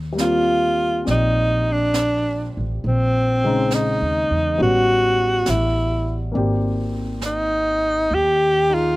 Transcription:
Already playing: upright bass D#2
0.12 grand piano G3 A#3
0.18 grand piano C4, alto saxophone F4, snare, hi-hat pedal
0.24 grand piano F4
1.05 upright bass A#1, grand piano C4 G4 D5, brush sweep, snare
1.11 alto saxophone D#4
1.72 alto saxophone D4
1.94 snare, hi-hat pedal
2.57 upright bass A1
2.82 upright bass A#1, brush sweep
2.87 alto saxophone C4
3.44 grand piano C#3 G#3 C4 D#4
3.71 snare, hi-hat pedal
3.75 alto saxophone D#4
4.02 upright bass D#2
4.31 upright bass E2
4.58 upright bass A1, grand piano G3 B3 C#4 F#4, brush sweep
4.62 alto saxophone F#4
5.46 upright bass A1, snare, hi-hat pedal
5.50 alto saxophone E4
6.32 upright bass G#1, grand piano A#3 C4 D5, brush sweep
6.37 grand piano G4
7.21 snare, hi-hat pedal
7.26 alto saxophone D#4
8.09 upright bass D#2, brush sweep
8.15 alto saxophone G4
8.70 grand piano D#4 G#4
8.74 alto saxophone F4

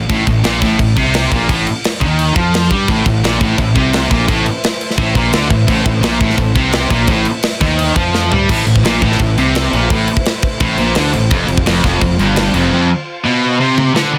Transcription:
0.09 fingered electric bass A1, distorted electric guitar A2, kick, crash
0.27 fingered electric bass A1, distorted electric guitar A2, kick, crash
0.44 fingered electric bass A#1, distorted electric guitar A#2, snare, crash
0.61 fingered electric bass A1, distorted electric guitar A2, kick, snare, crash
0.78 fingered electric bass A1, distorted electric guitar A2, kick, crash
0.96 fingered electric bass C2, distorted electric guitar C3, kick, crash
1.14 snare, crash
1.32 fingered electric bass A#1, distorted electric guitar A#2, kick, crash
1.49 fingered electric bass A1, distorted electric guitar A2, kick, crash
1.67 crash
1.84 snare, crash
2.01 fingered electric bass D#2, distorted electric guitar D#3, kick
2.19 crash
2.35 fingered electric bass F2, distorted electric guitar F3, kick, crash
2.54 snare, crash
2.71 fingered electric bass G2, distorted electric guitar G3, kick, crash
2.88 fingered electric bass A1, distorted electric guitar A2, string section A3 B4 C5 E5, kick, crash
3.06 fingered electric bass A1, distorted electric guitar A2, kick, crash
3.24 fingered electric bass A#1, distorted electric guitar A#2, snare, crash
3.40 fingered electric bass A1, distorted electric guitar A2, kick, crash
3.58 fingered electric bass A1, distorted electric guitar A2, kick, crash
3.76 fingered electric bass C2, distorted electric guitar C3, kick, crash
3.93 snare, crash
4.11 fingered electric bass A#1, distorted electric guitar A#2, kick, crash
4.28 fingered electric bass A1, distorted electric guitar A2, kick, crash
4.46 crash
4.64 snare, crash
4.81 crash
4.90 snare
4.97 fingered electric bass A1, distorted electric guitar A2, kick, crash
5.15 fingered electric bass A#1, distorted electric guitar A#2, kick, crash
5.33 fingered electric bass D2, distorted electric guitar D3, snare, crash
5.50 fingered electric bass A1, distorted electric guitar A2, kick, crash
5.67 fingered electric bass A1, distorted electric guitar A2, kick, crash
5.85 fingered electric bass A1, distorted electric guitar A2, kick, crash
6.02 fingered electric bass A#1, distorted electric guitar A#2, snare, crash
6.20 fingered electric bass A1, distorted electric guitar A2, kick, crash
6.30 snare
6.38 fingered electric bass A1, distorted electric guitar A2, kick, crash
6.55 fingered electric bass C2, distorted electric guitar C3, kick, crash
6.72 snare, crash
6.90 fingered electric bass A#1, distorted electric guitar A#2, kick, crash
7.07 fingered electric bass A1, distorted electric guitar A2, kick, crash
7.25 crash
7.43 snare, crash
7.61 fingered electric bass D#2, distorted electric guitar D#3, kick, snare, crash
7.79 crash
7.96 fingered electric bass F2, distorted electric guitar F3, kick, crash
8.15 snare
8.31 fingered electric bass G2, distorted electric guitar G3, floor tom
8.49 fingered electric bass A1, distorted electric guitar A2, string section A3 E4 B4 C5, kick, crash
8.66 fingered electric bass A1, distorted electric guitar A2, crash
8.76 kick
8.84 fingered electric bass A#1, distorted electric guitar A#2, snare, crash
9.02 fingered electric bass A1, distorted electric guitar A2, kick, crash
9.12 snare
9.19 fingered electric bass A1, distorted electric guitar A2, kick, crash
9.37 fingered electric bass C2, distorted electric guitar C3, crash
9.55 snare, crash
9.72 fingered electric bass A#1, distorted electric guitar A#2, crash
9.90 fingered electric bass A1, distorted electric guitar A2, kick, crash
10.08 crash
10.17 kick
10.25 snare, crash
10.42 kick, crash
10.60 fingered electric bass A1, distorted electric guitar A2, kick, crash
10.78 fingered electric bass A#1, distorted electric guitar A#2, crash
10.95 fingered electric bass D2, distorted electric guitar D3, snare, crash
11.13 fingered electric bass A1, distorted electric guitar A2, crash
11.31 fingered electric bass F1, distorted electric guitar F2, string section F4, kick, crash
11.48 fingered electric bass F1, distorted electric guitar F2, crash
11.57 kick
11.66 fingered electric bass F1, distorted electric guitar F2, snare, crash
11.84 fingered electric bass F1, distorted electric guitar F2, kick, snare, crash
12.01 fingered electric bass F1, distorted electric guitar F2, kick, crash
12.19 fingered electric bass G1, distorted electric guitar G2, crash
12.36 snare, crash
12.54 fingered electric bass F1, distorted electric guitar F2, crash
12.71 distorted electric guitar F2
13.24 distorted electric guitar B2
13.61 distorted electric guitar C3
13.78 high tom
13.94 distorted electric guitar D3, snare
14.12 distorted electric guitar B3 D4, string section D4 G4 B4 G5

